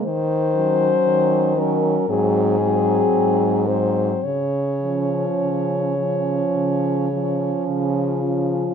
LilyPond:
<<
  \new Staff \with { instrumentName = "French horn" } { \time 4/4 \key des \major \tempo 4 = 54 c''4. bes'8 aes'4. c''8 | des''2. f'4 | }
  \new Staff \with { instrumentName = "French horn" } { \time 4/4 \key des \major r8 des'4 des'8 c'8 c'4 c'8 | r8 des'4 des'4 des'4 des'8 | }
  \new Staff \with { instrumentName = "French horn" } { \clef bass \time 4/4 \key des \major r8 ges4 ges8 ges8 ges4 ges8 | r8 f4 f4 f4 f8 | }
  \new Staff \with { instrumentName = "French horn" } { \clef bass \time 4/4 \key des \major ees4 ees4 aes,4 aes,4 | des4 des4 des4 des4 | }
>>